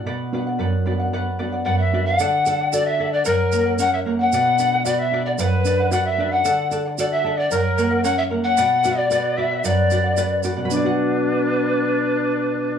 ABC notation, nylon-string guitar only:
X:1
M:2/4
L:1/8
Q:1/4=113
K:Bm
V:1 name="Nylon-string guitar"
B,, [B,DF] F,, [B,DF] | F,, [B,DF] F,, [B,DF] | D, A F A | F,, ^A, C A, |
B,, D F D | F,, D F D | D, A F A | F,, ^A, C A, |
B,, F B F | F,, F B F | [B,,F,B,DF]4- | [B,,F,B,DF]4 |]